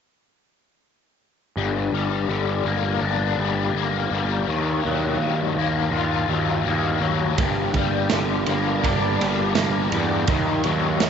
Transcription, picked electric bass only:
1.56 G1
1.92 G1
2.29 G1
2.65 G1
3.02 G1
3.38 G1
3.73 G1
4.11 G1
4.48 D#2
4.85 D#2
5.19 D#2
5.56 D#2
5.91 D#2
6.29 D#2
6.67 D#2
7.01 D#2
7.38 G1
7.74 G1
8.12 G1
8.47 G1
8.84 G1
9.21 G1
9.56 G1
9.91 E2
10.29 D#2
10.65 D#2
11.00 D#2

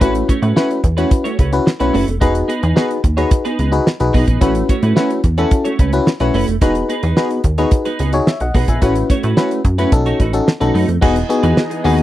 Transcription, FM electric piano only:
0.01 C#4 E4 F#4 B4
0.56 C#4 E4 F#4 B4
0.97 C#4 E4 F#4 B4
1.52 C#4 E4 F#4 B4
1.80 C#4 E4 F#4 B4
2.21 D#4 F#4 G#4 B4
2.76 D#4 F#4 G#4 B4
3.17 D#4 F#4 G#4 B4
3.72 D#4 F#4 G#4 B4
4.00 D#4 F#4 G#4 B4
4.41 C#4 E4 F#4 B4
4.96 C#4 E4 F#4 B4
5.38 C#4 E4 F#4 A4
5.93 C#4 E4 F#4 B4
6.20 C#4 E4 F#4 B4
6.62 D#4 F#4 G#4 B4
7.17 D#4 F#4 G#4 B4
7.58 D#4 F#4 G#4 B4
8.13 D#4 F#4 G#4 C#5
8.27 C#5 E5
8.41 D#5 F#5
8.68 E5 G#5
8.82 C#4 E4 F#4 B4
9.37 C#4 E4 F#4 B4
9.78 C#4 E4 F#4 B4
9.92 C#4 D#4 F#4 A4
10.33 C#4 D#4 F#4 A4
10.60 C#4 D#4 F#4 A4
11.01 B3 D#4 F#4 G#4
11.29 B3 D#4 F#4 G#4
11.84 B3 D#4 F#4 G#4

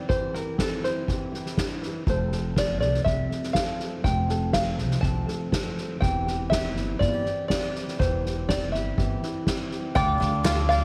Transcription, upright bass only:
2.07 F1
2.81 C2
3.06 C2
4.05 F1
4.78 C2
5.03 C2
6.02 E1
6.76 G1
7.01 G1
8.01 E1
8.73 G1
8.98 G1
9.96 D2
10.21 D2

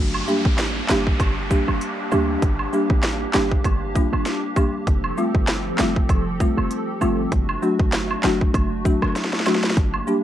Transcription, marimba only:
0.28 G3 A#3 D4 G4
0.89 G3 A#3 D4 G4
1.50 G3 A#3 D4 G4
2.11 G3 A#3 D4 G4
2.73 G3 A#3 D4 G4
3.34 G3 A#3 D4 G4
3.95 G3 A#3 D4 F4
4.56 G3 A#3 D4 G4
5.18 G3 A3 C4 F4
5.79 G3 A3 C4 F4
6.40 G3 A3 C4 F4
7.01 G3 A3 C4 F4
7.62 F#3 A3 D4 F#4
8.24 F#3 A3 D4 F#4
8.85 F#3 A3 D4 F#4
9.46 F#3 A3 D4 F#4
10.07 G3 A#3 D4 G4

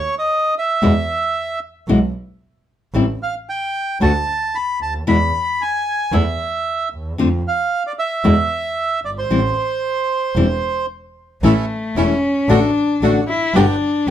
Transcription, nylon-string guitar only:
0.82 B2 E3 G#3 B3 E4
1.89 B2 E3 G#3 B3 E4
2.94 E3 G3 C4 E4
4.01 D3 A3 D4 F#4
5.07 B2 E3 G#3 B3 E4
6.12 E3 A3 B3 E4
7.18 D3 A3 C4 F4
8.24 B2 D3 G#3 B3 E4
9.30 E3 G3 C4 E4
10.36 E3 G3 C4 E4
11.43 E3 A3 C#4 E4
11.96 E3 A3 C#4 E4
12.49 D3 A3 D4 F#4
13.02 D3 A3 D4 F#4
13.56 B2 D3 G3 B3 G4

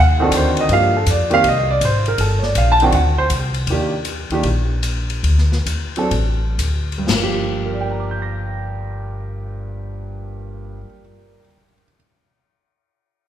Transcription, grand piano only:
0.00 F#5
0.18 D#3 C4 D4 F#4 G#4
0.22 A4
0.36 C5
0.60 D#5
0.71 F3 A#3 D4 G4 F5
0.97 A4
1.11 D5
1.30 D#3 A#3 C4 G4 F5
1.48 D#5
1.71 D5
1.85 C5
2.08 A#4
2.21 A4
2.39 C#5
2.43 D5
2.58 F5
2.72 A5
2.82 D#3 C4 D4 F#4 G5
2.95 F#5
3.18 C5
3.70 D#3 A#3 D4 G4
4.32 D#3 A#3 D4 G4
5.97 F#3 C4 D4 A4
6.98 G2
7.07 F3
7.15 A#3
7.23 G4
7.66 A#4
7.72 D5
7.80 G5
7.91 A#5
8.00 D6
8.11 G6
8.22 A#6

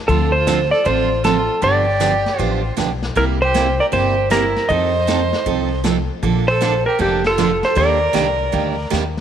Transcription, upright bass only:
0.09 D2
0.86 A1
1.62 G1
2.39 A1
2.78 B1
3.16 C2
3.93 G1
4.70 F2
5.46 C2
6.23 A#1
7.00 F1
7.76 D#2
8.15 C2
8.54 D2
8.92 D#2

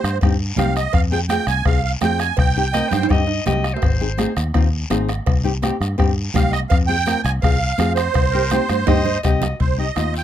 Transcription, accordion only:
Already playing: C5
0.57 F5
0.76 D#5
0.93 F5
1.12 G5
1.29 G5
1.48 G#5
1.66 F5
1.84 F5
2.02 G5
2.19 G#5
2.38 G5
6.35 F5
6.52 D#5
6.69 F5
6.87 G5
7.23 G#5
7.42 F5
7.95 C5
9.61 C5
9.79 D#5
9.97 D#5
10.17 G5

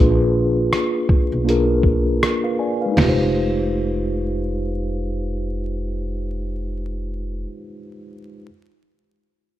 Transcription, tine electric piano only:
Already playing: A#3 D4 F4
0.00 G#4 B4
1.44 A#3 D4 F4
1.49 G#4 A#4
2.44 B4 F5
2.59 D5 G#5
2.81 B4 F5
2.86 G#3
2.92 D#4
2.97 F4
3.03 G4
3.09 C5

